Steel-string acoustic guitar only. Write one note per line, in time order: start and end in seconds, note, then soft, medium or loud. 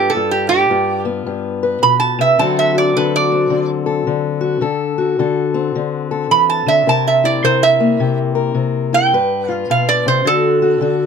0.00 0.12 G2 medium
0.00 0.10 B3 medium
0.00 0.11 F4 medium
0.00 0.10 B4 medium
0.15 0.69 G2 medium
0.15 0.50 F4 medium
0.51 0.69 F4 medium
0.70 1.25 G2 medium
0.70 2.37 F4 medium
1.05 2.36 B3 medium
1.26 1.82 G2 medium
1.63 2.37 B4 medium
1.82 2.17 B2 medium
2.19 2.38 C3 medium
2.38 2.96 D3 medium
2.38 4.61 F#3 medium
2.38 3.31 C4 medium
2.38 2.74 F#4 medium
2.38 2.97 A4 medium
2.75 4.40 F#4 medium
2.97 3.50 D3 medium
2.97 3.85 A4 medium
3.32 4.64 C4 medium
3.50 4.06 D3 medium
3.86 4.61 A4 medium
4.07 4.60 D3 medium
4.41 4.60 F#4 medium
4.61 5.18 D3 medium
4.61 5.18 A4 medium
4.98 6.85 F#4 medium
5.19 5.74 D3 medium
5.19 6.10 A4 medium
5.54 6.86 C4 medium
5.75 6.31 D3 medium
6.11 6.86 A4 medium
6.31 6.66 E3 medium
6.66 6.86 D3 medium
6.87 7.42 C3 medium
6.87 7.43 A#4 medium
7.24 8.92 E4 medium
7.44 7.99 C3 medium
7.44 8.34 A#4 medium
7.80 9.13 A#3 medium
8.00 8.53 C3 medium
8.35 9.10 A#4 medium
8.54 9.12 C3 medium
8.93 9.11 E4 medium
9.13 9.69 G2 medium
9.13 10.24 B4 medium
9.48 10.23 F4 medium
9.70 10.05 B2 medium
10.06 10.25 C3 medium
10.25 10.79 D3 medium
10.25 10.61 F#4 medium
10.62 10.81 F#4 medium
10.81 11.06 D3 medium
10.81 11.06 F#4 medium